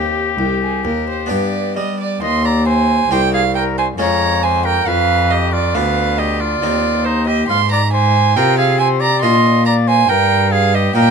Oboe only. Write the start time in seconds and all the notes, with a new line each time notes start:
Already playing: G4
2.23 D#5
2.45 D5
2.67 C5
3.11 C5
3.34 G#4
3.56 A#4
3.78 C5
4.01 C#5
4.44 C5
4.66 A#4
4.89 B4
5.32 G4
5.53 F4
5.76 B4
6.19 G4
6.41 F4
7.06 D#4
7.28 G4
7.50 F5
7.72 D5
7.94 C5
8.37 A#4
8.58 G#4
8.80 C5
9.01 D5
9.22 D#5
9.66 D5
9.88 C5
10.09 A#4
10.52 G#4
10.74 G4
10.96 A#4